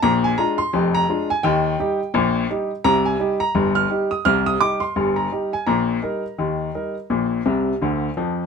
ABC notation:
X:1
M:2/4
L:1/16
Q:"Swing 16ths" 1/4=85
K:Eb
V:1 name="Upright piano"
b a b c'2 b2 a | g6 z2 | b a2 b2 f'2 e' | f' e' d' c'2 b2 a |
b8- | b4 z4 |]
V:2 name="Upright piano" clef=bass
[B,,,B,,]2 [A,DF]2 [F,,,F,,]2 [A,DF]2 | [E,,E,]2 [G,EG]2 [B,,,B,,]2 [G,EG]2 | [C,,C,]2 [G,EG]2 [G,,,G,,]2 [G,EG]2 | [C,,C,]2 [G,EG]2 [G,,,G,,]2 [G,EG]2 |
[B,,,B,,]2 [G,EB]2 [E,,E,]2 [G,EB]2 | [B,,,B,,]2 [C,,C,]2 [D,,D,]2 [F,,F,]2 |]